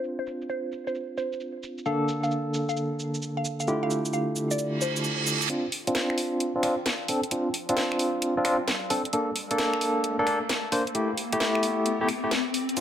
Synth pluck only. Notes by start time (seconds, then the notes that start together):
0.19 C5
0.49 C5
0.87 C5
1.18 C5
1.86 F5
2.23 F5
2.69 F5
3.37 F5
3.60 F5
3.83 F5
4.13 F5
4.51 D5
4.82 C5